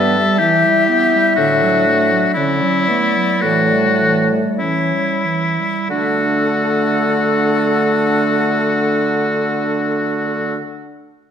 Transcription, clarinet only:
Already playing: B3
0.17 G3
0.40 E3
0.65 G3
0.89 B3
1.15 G3
1.39 D3
1.62 F#3
1.86 A3
2.12 F#3
2.37 D3
2.62 F#3
2.90 A3
3.16 F#3
3.44 E3
3.73 G3
4.02 E3
4.32 G3
4.62 E3
4.94 G3
5.26 E3
5.60 G3
5.91 D4

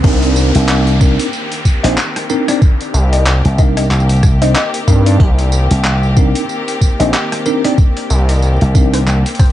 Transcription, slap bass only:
0.55 C2
1.84 A#1
3.45 C2
3.91 C2
5.71 C2
7.00 A#1
8.61 C2
9.07 C2

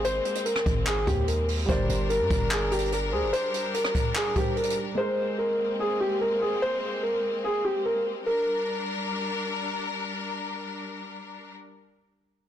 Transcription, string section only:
Already playing: G#3 A#3 C4
1.69 G3 D4 A#4
4.98 G#3 A#3 C4
8.26 G3 D4 A#4

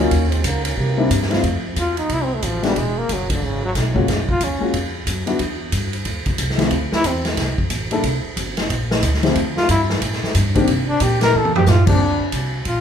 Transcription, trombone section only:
Already playing: D#3 F#3 A#3 C#4
0.30 C#3 F3 G#3 C4
0.44 C#3 D#3 F#3 A#3
0.64 D#3 F#3 A#3 C#4
0.77 C3 E3 G3 A#3

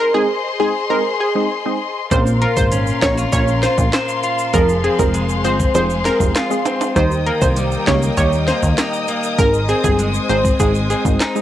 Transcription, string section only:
Already playing: G#4 C5 D#5 C6
2.11 A#4 F5 C6
4.54 G#4 C5
6.96 A#4 D#5 G5 D#6
9.39 C5 G#5

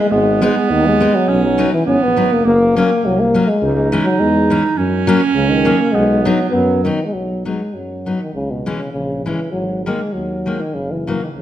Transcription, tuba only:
0.11 G#1
0.70 D#2
1.28 B1
1.86 G#1
2.03 A#1
2.18 G#1
2.32 F#1
2.45 F#1
3.04 C2
3.62 C#2
4.20 E2
4.77 F#2
5.35 C#2
5.93 B1
6.53 F#2
7.14 B1
7.74 F#2
8.35 C#2
8.94 A#1
9.53 G#1
10.14 D#2
10.74 F#1
11.35 A#1

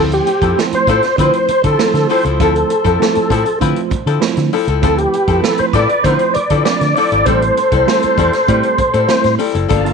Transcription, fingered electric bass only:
Already playing: D2
0.42 F2
0.72 muted fingered electric bass stroke
0.87 A2
1.18 D3
1.49 muted fingered electric bass stroke
1.64 D3
1.94 D3
2.25 C#2
2.40 D2
2.85 F2
3.17 muted fingered electric bass stroke
3.30 A2
3.61 D3
3.91 muted fingered electric bass stroke
4.06 D3
4.37 D3
4.67 C#2
4.83 D2
5.28 F2
5.59 muted fingered electric bass stroke
5.74 A2
6.04 D3
6.36 muted fingered electric bass stroke
6.50 D3
6.81 D3
7.12 G#1
7.26 A1
7.72 C2
8.04 muted fingered electric bass stroke
8.18 E2
8.49 A2
8.78 muted fingered electric bass stroke
8.94 A2
9.24 A2
9.55 F#1
9.71 G1

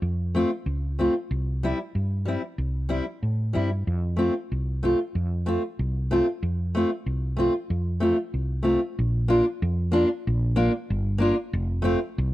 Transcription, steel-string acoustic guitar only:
0.35 A3 C4 F4
0.99 A3 C4 F4
1.63 G3 C4 E4
2.25 G3 C4 E4
2.89 G3 C4 E4
3.53 G3 C4 E4
4.17 A3 C4 F4
4.83 A3 C4 F4
5.46 A3 C4 F4
6.11 A3 C4 F4
6.75 A3 C4 F4
7.37 A3 C4 F4
8.00 A3 C4 F4
8.63 A3 C4 F4
9.28 A#3 D4 F4
9.92 A#3 D4 F4
10.56 A#3 D4 F4
11.18 A#3 D4 F4
11.82 A3 C4 F4

